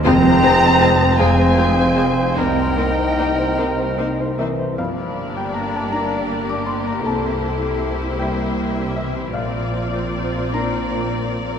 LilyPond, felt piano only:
\new Staff \with { instrumentName = "Felt piano" } { \time 6/8 \key c \phrygian \tempo 4. = 52 << { r2. | r2 r8 e''8 | \key g \minor f''8. g''16 bes''16 a''16 bes''8. d'''16 c'''16 bes''16 | a''4. g''4 e''8 |
f''4. bes''4. | } \\ { f,16 c''16 aes'16 c''16 c'16 c''16 aes'16 c''16 c'16 c''16 aes'16 c''16 | c,16 c''16 bes'16 c''16 ees'16 c''16 bes'16 c''16 ees'16 c''16 bes'16 c''16 | g,4. <bes d' d''>4. | c,4. <bes e' c''>4. |
bes,,4. <bes d' c''>4. | } >> }